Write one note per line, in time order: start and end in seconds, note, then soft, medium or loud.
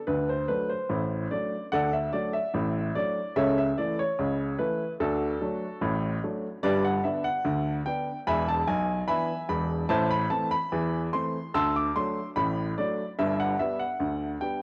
0.07 0.43 D2 medium
0.07 0.43 D3 loud
0.07 0.29 B4 medium
0.29 0.50 C5 medium
0.48 0.72 F#3 medium
0.48 0.72 A3 medium
0.48 0.72 D4 medium
0.48 0.70 B4 loud
0.69 1.28 C5 medium
0.89 1.25 A1 medium
0.89 1.25 A2 medium
1.31 1.54 F#3 medium
1.31 1.54 A3 medium
1.31 1.54 D4 medium
1.31 1.64 D5 medium
1.72 2.07 D2 medium
1.72 2.07 D3 loud
1.72 1.92 A4 medium
1.72 1.92 D5 loud
1.72 1.93 F#5 loud
1.93 2.14 E5 loud
2.13 2.36 F#3 medium
2.13 2.36 A3 medium
2.13 2.36 D4 medium
2.13 2.34 D5 loud
2.33 2.92 E5 loud
2.54 2.89 A1 medium
2.54 2.89 A2 medium
2.95 3.18 F#3 medium
2.95 3.18 A3 medium
2.95 3.19 D4 medium
2.95 3.34 D5 loud
3.36 3.71 C#2 medium
3.36 3.71 C#3 loud
3.36 3.56 A4 medium
3.36 3.56 C#5 loud
3.36 3.56 E5 loud
3.58 3.78 E5 loud
3.78 4.00 E3 medium
3.78 4.01 A3 medium
3.78 4.01 E4 medium
3.78 3.98 D5 loud
3.99 4.56 C#5 loud
4.19 4.53 C#2 medium
4.19 4.53 C#3 medium
4.58 4.81 E3 medium
4.58 4.81 A3 medium
4.58 4.82 E4 medium
4.58 4.91 B4 loud
5.00 5.35 D2 loud
5.00 5.35 D3 loud
5.00 5.40 D4 medium
5.00 6.19 F#4 medium
5.00 5.98 A4 loud
5.41 5.64 F#3 medium
5.41 5.64 A3 medium
5.41 5.64 D4 medium
5.81 6.16 A1 medium
5.81 6.16 A2 loud
6.23 6.46 F#3 medium
6.23 6.46 A3 medium
6.23 6.46 D4 medium
6.63 6.98 G1 loud
6.63 6.98 G2 loud
6.63 6.83 G4 medium
6.63 6.83 B4 loud
6.63 6.83 D5 loud
6.85 7.04 F#5 loud
7.04 7.26 D3 medium
7.04 7.27 B3 medium
7.04 7.27 D4 medium
7.04 7.24 E5 medium
7.24 7.74 F#5 loud
7.45 7.80 D2 medium
7.45 7.80 D3 loud
7.86 8.09 D3 medium
7.86 8.09 B3 medium
7.86 8.09 D4 medium
7.86 8.19 G5 loud
8.27 8.60 E1 loud
8.27 8.60 E2 loud
8.27 8.47 E5 loud
8.27 8.47 G#5 loud
8.27 8.47 B5 loud
8.49 8.68 A5 loud
8.68 9.00 B1 loud
8.68 9.00 G#5 loud
9.08 9.31 E3 medium
9.08 9.31 B3 medium
9.08 9.31 D4 medium
9.08 9.47 E5 medium
9.08 9.47 G#5 loud
9.08 9.41 B5 loud
9.49 9.82 E1 medium
9.49 9.82 E2 medium
9.49 9.88 B5 loud
9.89 10.24 A1 loud
9.89 10.25 A2 loud
9.89 10.09 C5 loud
9.89 10.09 E5 loud
9.89 10.10 A5 loud
10.10 10.31 B5 loud
10.30 10.53 E3 medium
10.30 10.53 A3 medium
10.30 10.54 C4 medium
10.30 10.51 A5 loud
10.51 11.00 B5 loud
10.72 11.07 E2 loud
10.72 11.07 E3 loud
11.13 11.36 E3 medium
11.13 11.36 A3 medium
11.13 11.36 C4 medium
11.13 11.52 C6 loud
11.54 11.89 D2 loud
11.54 11.89 D3 loud
11.54 11.74 A5 loud
11.54 11.74 C6 loud
11.54 11.75 E6 loud
11.76 11.96 D6 loud
11.96 12.18 F#3 medium
11.96 12.18 A3 medium
11.96 12.19 D4 medium
11.96 12.28 C6 loud
12.36 12.71 A1 medium
12.36 12.71 A2 loud
12.36 12.69 B5 loud
12.78 13.00 F#3 medium
12.78 13.01 A3 medium
12.78 13.01 D4 medium
12.78 13.10 D5 loud
13.19 13.53 G1 loud
13.19 13.53 G2 loud
13.19 13.39 E5 loud
13.40 13.60 F#5 loud
13.59 13.82 G3 medium
13.59 13.82 B3 medium
13.59 13.82 D4 medium
13.59 13.80 E5 loud
13.79 14.29 F#5 medium
14.00 14.35 D2 medium
14.00 14.35 D3 medium
14.41 14.62 G3 soft
14.41 14.62 B3 soft
14.41 14.62 D4 medium
14.41 14.62 G5 loud